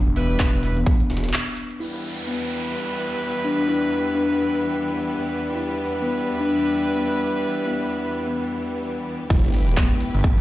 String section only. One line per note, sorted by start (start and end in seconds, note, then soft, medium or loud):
1.80 9.26 E2 medium
1.80 9.26 E3 medium
1.80 9.26 G3 medium
1.80 9.26 B3 medium
9.30 10.41 E3 medium
9.30 10.41 E4 medium
9.30 10.41 G4 medium
9.30 10.41 B4 medium